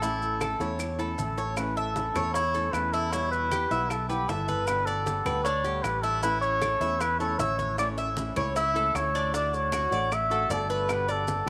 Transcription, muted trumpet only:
0.00 1.00 A4 medium
1.19 1.55 A4 medium
1.58 1.79 B4 medium
1.77 2.33 A4 medium
2.34 2.74 C#5 loud
2.73 2.95 B4 loud
2.93 3.13 A4 medium
3.12 3.31 C#5 medium
3.32 3.91 B4 loud
3.90 4.09 A4 medium
4.09 4.30 G4 medium
4.29 4.68 A4 medium
4.67 4.87 B4 loud
4.86 5.44 A4 medium
5.44 5.84 C#5 loud
5.83 6.04 B4 loud
6.02 6.22 A4 medium
6.23 6.41 B4 loud
6.42 7.02 C#5 loud
7.01 7.20 B4 loud
7.20 7.41 A4 loud
7.39 7.78 C#5 loud
7.79 7.88 D5 loud
8.57 8.98 E5 loud
8.96 9.34 C#5 loud
9.36 9.56 D5 loud
9.55 10.15 C#5 loud
10.14 10.51 E5 loud
10.53 10.93 A4 medium
10.92 11.13 B4 loud
11.11 11.49 A4 medium

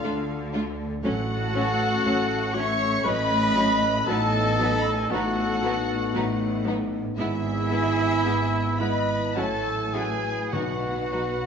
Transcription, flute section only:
0.00 0.51 A4 medium
1.04 2.51 A4 loud
2.55 3.06 E5 loud
3.06 4.07 D#5 loud
4.08 5.09 D#5 loud
5.11 6.66 A4 loud
7.17 8.76 G#4 loud
8.80 9.35 D#5 medium
9.37 9.94 C#5 medium
9.94 10.51 B4 medium
10.52 11.46 B4 medium

